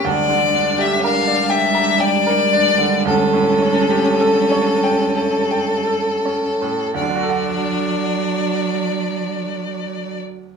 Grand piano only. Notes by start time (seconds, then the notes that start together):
0.05 D2
0.29 D3
0.54 D4
0.78 G4
1.04 A#4
1.28 D5
1.50 G5
1.75 A#5
2.00 G5
2.27 A#4
2.53 D4
2.78 D3
3.05 D2
3.33 A2
3.62 C#4
3.90 G4
4.21 A4
4.51 C#5
4.84 G5
5.17 A5
5.51 G5
5.87 A4
6.25 C#4
6.62 A2
6.94 D2
7.01 D3
7.09 D4
7.15 F#4
7.23 A4
7.29 F#5